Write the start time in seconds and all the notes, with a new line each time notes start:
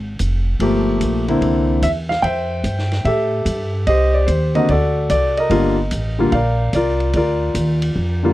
Already playing: G#1
0.19 F1, hi-hat pedal, ride
0.60 G1 F3 A3 A#3 G4, ride
1.00 A#1, hi-hat pedal, ride
1.28 D3 A#3 C4 E4, ride
1.41 C2, ride
1.82 E2 E5, hi-hat pedal, ride
2.09 F5, snare
2.22 F2 C5 E5 G5, ride
2.64 G2, hi-hat pedal, ride
2.78 snare
2.91 snare, ride
3.05 A2 G4 A4 E5, ride
3.45 G2, hi-hat pedal, ride
3.87 C2 G4 C5 D#5, ride
4.14 D5
4.26 D#2 C5, hi-hat pedal, ride
4.55 D3 A#3 C4 F#4 D#5, ride
4.69 D2 F#4 A4 D5, ride
5.10 C2 D5, hi-hat pedal, ride
5.37 A#4 D#5, ride
5.50 G1 D3 G3 A#3 F4, ride
5.91 A1, hi-hat pedal, ride
6.19 D3 G3 A#3 F4
6.32 A#1 A#4 D5 F5, ride
6.73 C2 F4 A#4 D5, hi-hat pedal, ride
7.00 ride
7.13 D2 F4 A#4 D5, ride
7.55 D#2, hi-hat pedal, ride
7.82 ride
7.96 F2
8.23 D3 G3 A#3 F4